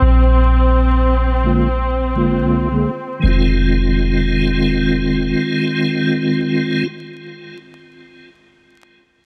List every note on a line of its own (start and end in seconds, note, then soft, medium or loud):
0.00 2.18 A#1 medium
0.00 3.24 C4 medium
1.44 1.68 D3 medium
1.44 1.68 G#3 medium
1.44 1.69 A#3 medium
1.44 1.69 F4 medium
2.15 2.40 G#1 medium
2.15 2.67 D3 medium
2.15 2.68 G#3 medium
2.15 2.68 A#3 medium
2.15 2.69 F4 medium
2.38 2.85 C2 medium
2.71 2.90 D3 medium
2.71 2.91 G#3 medium
2.71 2.91 A#3 medium
2.71 2.92 G#4 medium
3.19 6.83 D#3 medium
3.19 6.84 G#3 medium
3.24 5.34 F1 medium
3.24 6.86 C4 medium
3.28 6.87 F4 medium